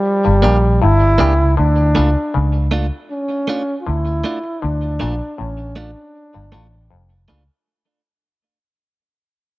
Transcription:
Already playing: G3
0.25 G1 G2
0.42 A#1 A#2 A#3 D4 G4
0.82 G1 G2 E4
1.18 C#2 C#3 A#3 D4 G4
1.57 D2 D3 D4
1.95 C#2 C#3 A3 D4 F4
2.34 C#2 C#3
2.71 A3 D4 F4
3.11 C#4
3.48 A3 D4 F4
3.81 F4
3.87 D2 D3 E4
4.24 A3 D4 F4
4.44 muted clean electric guitar stroke
4.62 D2 D3 D4
5.00 A#1 A#2 A3 D4 F4
5.38 A1 A2 C#4
5.76 A3 D4 F4
6.34 G1 G2
6.52 A1 A2 A3 D4 F4
6.90 F1 F2
7.28 C#2 C#3 A3 D4 F4

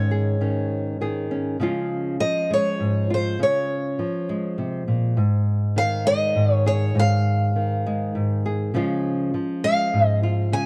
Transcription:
Already playing: G#2 D#3 C#4 G#4 C#5
0.11 G#4
0.41 D#3 C#4
1.01 D#3 G#4
1.31 C#4
1.60 C#3 F3 G#3 C#4 F4
2.20 F3 D#5
2.50 G#3 C#5
2.80 G#2
3.10 F4 C5
3.39 C#3 C#5
3.99 F3
4.29 G#3
4.58 C3
4.88 A#2
5.17 G#2
5.76 D#3 F5
6.06 G#3 D#5
6.35 G#2
6.54 C#5
6.66 G#4 C#5
6.95 G#2
7.00 F5
7.56 D#3
7.86 G#3
8.15 G#2
8.46 G#4
8.74 C#3 F3 G#3 C#4 F4
9.34 F3
9.64 G#3 F5
9.93 G#2
10.07 D#5
10.23 F4
10.52 C#3 G#5

